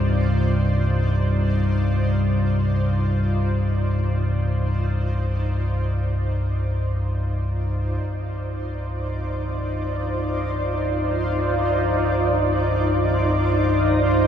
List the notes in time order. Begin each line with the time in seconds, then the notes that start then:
Already playing: C2 G2 D#4 F4 C5 D5
8.02 C2 G2 D#4